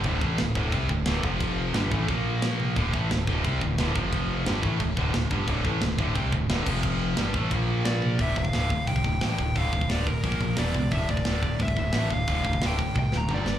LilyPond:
<<
  \new Staff \with { instrumentName = "Lead electric guitar" } { \time 4/4 \key d \minor \tempo 4 = 177 r1 | r1 | r1 | r1 |
r1 | r2. d''4 | e''8 f''4. g''4 g''4 | f''4 d''8 bes'4. d''4 |
e''8 d''4. e''4. f''8~ | f''4 g''4 g''8 bes''8 d''4 | }
  \new Staff \with { instrumentName = "Distorted electric guitar" } { \clef bass \time 4/4 \key d \minor <d, a, d>8 <a, e a>8 <d, a,>8 <d, a, d>8 <c g c'>8 <d, a,>8 <d, a, d>8 <f, c f>8~ | <f, c f>4 <g, d g>8 <a, e a>8 <bes, f bes>2 | <d, a, d>8 <a, e a>8 <d, a,>8 <d, a, d>8 <c g c'>8 <d, a,>8 <d, a, d>8 <f, c f>8~ | <f, c f>4 <g, d g>8 <a, e a>8 <d, a,>8 <d, a, d>8 <d, a,>8 <g, d g>8 |
<d, a, d>8 <a, e a>8 <d, a,>8 <d, a, d>8 <c g c'>8 <d, a,>8 <d, a, d>8 <f, c f>8~ | <f, c f>4 <g, d g>8 <a, e a>8 <bes, f bes>2 | r1 | r1 |
r1 | r1 | }
  \new Staff \with { instrumentName = "Distorted electric guitar" } { \clef bass \time 4/4 \key d \minor <d, a, d>8 <a, e a>8 <d, a,>8 <d, a, d>8 <c g c'>8 <d, a,>8 <d, a, d>8 <f, c f>8~ | <f, c f>4 <g, d g>8 <a, e a>8 <bes, f bes>2 | <d, a, d>8 <a, e a>8 <d, a,>8 <d, a, d>8 <c g c'>8 <d, a,>8 <d, a, d>8 <f, c f>8~ | <f, c f>4 <g, d g>8 <a, e a>8 <d, a,>8 <d, a, d>8 <d, a,>8 <g, d g>8 |
<d, a, d>8 <a, e a>8 <d, a,>8 <d, a, d>8 <c g c'>8 <d, a,>8 <d, a, d>8 <f, c f>8~ | <f, c f>4 <g, d g>8 <a, e a>8 <bes, f bes>2 | <d, a, d>8 <d, a,>8 <d, a, d>8 <d, a,>8 <d, a,>8 <d, a,>8 <d, a, d>8 <d, a,>8 | <d, a, d>8 <d, a,>8 <d, a, d>8 <d, a,>8 <bes, f bes>8 <bes, f>8 <e, b, e>8 <e, b,>8 |
<d, a, d>8 <d, a,>8 <d, a, d>8 <d, a,>8 <d, a,>8 <d, a,>8 <d, a, d>8 <d, a,>8 | <d, a, d>8 <d, a,>8 <d, a, d>8 <d, a,>8 <d, a,>8 <d, a,>8 <g, d g>8 <g, d>8 | }
  \new Staff \with { instrumentName = "Distorted electric guitar" } { \clef bass \time 4/4 \key d \minor <d, a, d>8 <a, e a>8 <d, a,>8 <d, a, d>8 <c g c'>8 <d, a,>8 <d, a, d>8 <f, c f>8~ | <f, c f>4 <g, d g>8 <a, e a>8 <bes, f bes>2 | <d, a, d>8 <a, e a>8 <d, a,>8 <d, a, d>8 <c g c'>8 <d, a,>8 <d, a, d>8 <f, c f>8~ | <f, c f>4 <g, d g>8 <a, e a>8 <d, a,>8 <d, a, d>8 <d, a,>8 <g, d g>8 |
<d, a, d>8 <a, e a>8 <d, a,>8 <d, a, d>8 <c g c'>8 <d, a,>8 <d, a, d>8 <f, c f>8~ | <f, c f>4 <g, d g>8 <a, e a>8 <bes, f bes>2 | <d, a, d>8 <d, a,>8 <d, a, d>8 <d, a,>8 <d, a,>8 <d, a,>8 <d, a, d>8 <d, a,>8 | <d, a, d>8 <d, a,>8 <d, a, d>8 <d, a,>8 <bes, f bes>8 <bes, f>8 <e, b, e>8 <e, b,>8 |
<d, a, d>8 <d, a,>8 <d, a, d>8 <d, a,>8 <d, a,>8 <d, a,>8 <d, a, d>8 <d, a,>8 | <d, a, d>8 <d, a,>8 <d, a, d>8 <d, a,>8 <d, a,>8 <d, a,>8 <g, d g>8 <g, d>8 | }
  \new Staff \with { instrumentName = "Fingered electric bass" } { \clef bass \time 4/4 \key d \minor d,,8 a,,8 d,,8 d,,8 c,8 d,,8 d,,8 f,,8~ | f,,4 g,,8 a,,8 bes,,2 | d,,8 a,,8 d,,8 d,,8 c,8 d,,8 d,,8 f,,8~ | f,,4 g,,8 a,,8 d,,8 d,,8 d,,8 g,,8 |
d,,8 a,,8 d,,8 d,,8 c,8 d,,8 d,,8 f,,8~ | f,,4 g,,8 a,,8 bes,,2 | d,,8 d,,8 d,,4 c,8 d,,8 a,,8 d,,8 | d,,8 d,,8 d,,4 bes,,8 bes,,8 e,,8 cis,8 |
d,,8 d,,8 d,,4 c,8 d,,8 a,,8 d,,8 | d,,8 d,,8 d,,4 c,8 d,,8 g,,8 g,,8 | }
  \new DrumStaff \with { instrumentName = "Drums" } \drummode { \time 4/4 <cymc bd>8 bd8 <cymc sn>8 bd8 <cymc bd>8 bd8 <cymc sn>8 bd8 | <cymc bd>4 <cymc sn>8 bd8 <cymc bd>4 <cymc sn>8 tommh8 | <cymc bd>8 bd8 <cymc sn>8 bd8 <cymc bd>8 bd8 <cymc sn>8 bd8 | <cymc bd>4 <cymc sn>8 bd8 <cymc bd>8 bd8 <cymc sn>8 bd8 |
<cymc bd>8 bd8 <cymc sn>8 bd8 <cymc bd>8 bd8 <cymc sn>8 <cymc bd>8 | <cymc bd>4 <cymc sn>8 bd8 <cymc bd>4 <cymc sn>8 tommh8 | <hho bd>8 bd16 bd16 <hho sn>8 bd8 <hho bd>16 bd16 bd8 <hho sn>8 bd8 | <hho bd>8 bd16 bd16 <hho sn>8 bd8 <hho bd>16 bd16 bd8 <hho sn>8 bd8 |
<hho bd>8 bd16 bd16 <hho sn>8 bd8 <hho bd>16 bd16 bd8 <hho sn>8 bd8 | <hho bd>8 bd16 bd16 <hho sn>8 bd8 <bd tommh>8 sn8 toml8 sn8 | }
>>